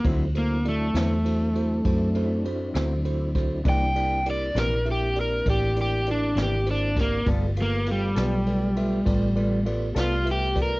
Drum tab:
RD |xxxxxxxxxxxx|xxxxxxxxxxxx|xxxxxxxxxxxx|
SD |---o-----o-o|---o-----o-o|---o-----o--|
BD |o-----o----o|o-----o----o|o-----o----o|